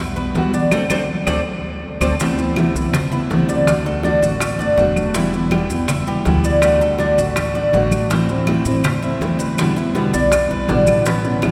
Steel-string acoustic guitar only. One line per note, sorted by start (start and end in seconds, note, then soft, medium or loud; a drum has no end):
0.16 0.35 G3 soft
0.16 0.35 B3 soft
0.16 0.34 F#4 soft
0.35 0.53 B2 medium
0.35 0.53 E3 medium
0.35 0.53 G3 medium
0.35 0.54 B3 medium
0.35 0.53 F#4 medium
0.54 0.73 G3 soft
0.54 0.72 B3 soft
0.54 0.71 F#4 soft
0.72 0.84 A3 medium
0.72 0.84 C4 medium
0.72 0.84 D4 medium
0.91 1.03 A3 medium
0.91 1.03 C4 medium
0.91 1.03 D4 medium
1.28 1.39 A3 medium
1.28 1.39 C4 medium
1.28 1.39 D4 medium
2.03 2.14 A3 medium
2.03 2.14 C4 medium
2.03 2.14 D4 medium
2.20 2.37 C3 medium
2.20 2.38 E3 medium
2.20 2.38 A3 medium
2.20 2.38 B3 medium
2.20 2.37 E4 medium
2.39 2.57 A3 soft
2.39 2.57 B3 soft
2.39 2.56 E4 soft
2.57 2.74 C3 medium
2.57 2.75 E3 medium
2.57 2.75 A3 medium
2.57 2.75 B3 medium
2.57 2.75 E4 medium
2.76 2.94 A3 soft
2.76 2.94 B3 soft
2.76 2.93 E4 medium
2.95 muted steel-string acoustic guitar stroke medium
3.12 3.31 A3 soft
3.12 3.30 B3 soft
3.12 3.30 E4 soft
3.32 3.67 C3 medium
3.32 3.67 E3 medium
3.32 3.67 A3 medium
3.32 3.68 B3 medium
3.32 3.68 E4 medium
3.67 3.85 D3 medium
3.67 3.85 A3 medium
3.67 3.85 D4 medium
3.67 3.84 F#4 medium
3.85 4.04 A3 soft
3.85 4.04 D4 soft
3.85 4.03 F#4 soft
4.04 4.22 D3 medium
4.04 4.22 A3 medium
4.04 4.22 D4 medium
4.04 4.21 F#4 medium
4.22 4.40 A3 soft
4.22 4.40 D4 soft
4.22 4.40 F#4 soft
4.41 muted steel-string acoustic guitar stroke medium
4.60 4.78 A3 soft
4.60 4.78 D4 soft
4.60 4.77 F#4 soft
4.78 5.14 D3 medium
4.78 5.15 A3 medium
4.78 5.15 D4 medium
4.78 5.15 F#4 medium
5.15 5.33 B2 medium
5.15 5.33 E3 medium
5.15 5.34 G3 medium
5.15 5.34 B3 medium
5.15 5.32 E4 medium
5.34 5.52 G3 soft
5.34 5.52 B3 soft
5.34 5.51 E4 medium
5.52 5.70 B2 medium
5.52 5.70 E3 medium
5.52 5.70 G3 medium
5.52 5.70 B3 medium
5.52 5.69 E4 medium
5.70 5.88 G3 soft
5.70 5.88 B3 soft
5.70 5.88 E4 medium
5.89 muted steel-string acoustic guitar stroke medium
6.07 6.26 G3 soft
6.07 6.25 B3 soft
6.07 6.25 E4 soft
6.26 6.62 B2 medium
6.26 6.62 E3 medium
6.26 6.63 G3 medium
6.26 6.63 B3 medium
6.26 6.63 E4 medium
6.62 6.80 D3 medium
6.62 6.81 A3 medium
6.62 6.81 D4 medium
6.62 6.80 F#4 medium
6.81 6.99 A3 soft
6.81 6.99 D4 soft
6.81 6.99 F#4 soft
7.00 7.17 D3 medium
7.00 7.18 A3 medium
7.00 7.18 D4 medium
7.00 7.18 F#4 medium
7.19 7.37 A3 soft
7.19 7.37 D4 soft
7.19 7.36 F#4 soft
7.37 muted steel-string acoustic guitar stroke soft
7.56 7.74 A3 soft
7.56 7.74 D4 soft
7.56 7.73 F#4 soft
7.74 8.10 D3 medium
7.74 8.10 A3 medium
7.74 8.11 D4 medium
7.74 8.11 F#4 medium
8.12 8.29 E3 medium
8.12 8.29 A3 medium
8.12 8.29 C4 medium
8.12 8.28 E4 medium
8.29 8.47 A3 soft
8.29 8.47 C4 soft
8.29 8.47 E4 soft
8.48 8.65 E3 medium
8.48 8.66 A3 medium
8.48 8.66 C4 medium
8.48 8.65 E4 medium
8.66 8.84 A3 soft
8.66 8.84 C4 soft
8.66 8.84 E4 medium
8.85 muted steel-string acoustic guitar stroke medium
9.03 9.21 A3 soft
9.03 9.21 C4 soft
9.03 9.21 E4 soft
9.22 9.58 E3 medium
9.22 9.58 A3 medium
9.22 9.58 C4 medium
9.22 9.59 E4 medium
9.59 9.76 B2 medium
9.59 9.77 D3 medium
9.59 9.77 G3 medium
9.59 9.77 B3 medium
9.59 9.76 E4 medium
9.77 9.95 G3 soft
9.77 9.95 B3 soft
9.77 9.95 E4 soft
9.95 10.13 B2 medium
9.95 10.13 D3 medium
9.95 10.13 G3 medium
9.95 10.13 B3 medium
9.95 10.12 E4 medium
10.13 10.31 G3 soft
10.13 10.32 B3 soft
10.13 10.31 E4 medium
10.32 muted steel-string acoustic guitar stroke medium
10.50 10.68 G3 soft
10.50 10.68 B3 soft
10.50 10.68 E4 soft
10.68 11.05 B2 medium
10.68 11.05 D3 medium
10.68 11.05 G3 medium
10.68 11.05 B3 medium
10.68 11.06 E4 medium
11.05 11.23 E3 medium
11.05 11.24 B3 medium
11.05 11.24 C#4 medium
11.05 11.23 E4 medium
11.24 11.42 B3 soft
11.24 11.43 C#4 soft
11.24 11.42 E4 soft
11.42 11.51 E3 medium
11.42 11.51 B3 medium
11.42 11.51 C#4 medium
11.42 11.51 E4 medium